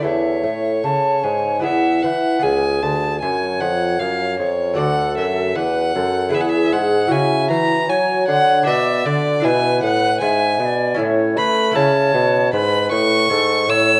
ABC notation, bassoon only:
X:1
M:3/4
L:1/8
Q:1/4=77
K:A
V:1 name="Bassoon" clef=bass
E,, A,, C, G,, E,, E, | C,, D,, F,, ^E,, F,, E,, | D,, F,, E,, F,, E,, G,, | C, E, F, D, B,, D, |
B,, A,, G,, B,, A,, A, | C, B,, G,, A,, G,, A,, |]